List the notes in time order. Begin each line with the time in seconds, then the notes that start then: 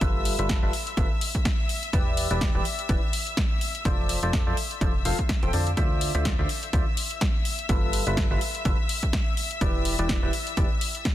Already playing: E5 E6
0.01 G1 G3 F4 A4 B4 E5, kick, closed hi-hat
0.25 open hi-hat
0.39 G1 G3 F4 A4 B4 E5, closed hi-hat
0.49 kick, snare, closed hi-hat
0.63 G1 G3 F4 A4 B4 E5
0.73 open hi-hat
0.87 closed hi-hat
0.97 G1 G3 F4 A4 B4 E5, kick, closed hi-hat
1.21 open hi-hat
1.35 kick, closed hi-hat
1.45 kick, snare, closed hi-hat
1.69 open hi-hat
1.83 closed hi-hat
1.93 E1 E3 E4 G4 B4 D5, kick, closed hi-hat
2.17 open hi-hat
2.31 E1 E3 E4 G4 B4 D5, closed hi-hat
2.41 kick, snare, closed hi-hat
2.55 E1 E3 E4 G4 B4 D5
2.65 open hi-hat
2.79 closed hi-hat
2.89 E1 E3 E4 G4 B4 D5, kick, closed hi-hat
3.13 open hi-hat
3.27 closed hi-hat
3.37 kick, snare, closed hi-hat
3.61 open hi-hat
3.75 closed hi-hat
3.85 F1 F3 F4 A4 C5 D5, kick, closed hi-hat
4.09 open hi-hat
4.23 F1 F3 F4 A4 C5 D5, closed hi-hat
4.33 kick, snare, closed hi-hat
4.47 F1 F3 F4 A4 C5 D5
4.57 open hi-hat
4.71 closed hi-hat
4.81 F1 F3 F4 A4 C5 D5, kick, closed hi-hat
5.05 F1 F3 F4 A4 C5 F5, open hi-hat
5.19 kick, closed hi-hat
5.29 kick, snare, closed hi-hat
5.43 F1 F3 F4 A4 C5 G5, closed hi-hat
5.53 F2 D3 F4 A4 C5 D5, open hi-hat
5.67 closed hi-hat
5.77 D2 D3 F4 C5 D5 E5 E6, kick, closed hi-hat
6.01 open hi-hat
6.15 D2 D3 F4 C5 D5 E5, closed hi-hat
6.25 kick, snare, closed hi-hat
6.39 D2 D3 F4 C5 D5 E5
6.49 open hi-hat
6.63 closed hi-hat
6.73 D2 D3 F4 C5 D5 E5, kick, closed hi-hat
6.97 open hi-hat
7.11 closed hi-hat
7.21 kick, snare, closed hi-hat
7.45 open hi-hat
7.59 closed hi-hat
7.69 G1 G3 F4 A4 B4 E5, kick, closed hi-hat
7.93 open hi-hat
8.07 G1 G3 F4 A4 B4 E5, closed hi-hat
8.17 kick, snare, closed hi-hat
8.31 G1 G3 F4 A4 B4 E5
8.41 open hi-hat
8.55 closed hi-hat
8.65 G1 G3 F4 A4 B4 E5, kick, closed hi-hat
8.89 open hi-hat
9.03 kick, closed hi-hat
9.13 kick, snare, closed hi-hat
9.37 open hi-hat
9.51 closed hi-hat
9.61 E1 E3 E4 G4 B4 D5, kick, closed hi-hat
9.85 open hi-hat
9.99 E1 E3 E4 G4 B4 D5, closed hi-hat
10.09 kick, snare, closed hi-hat
10.23 E1 E3 E4 G4 B4 D5
10.33 open hi-hat
10.47 closed hi-hat
10.57 E1 E3 E4 G4 B4 D5, kick, closed hi-hat
10.81 open hi-hat
10.95 closed hi-hat
11.05 kick, snare, closed hi-hat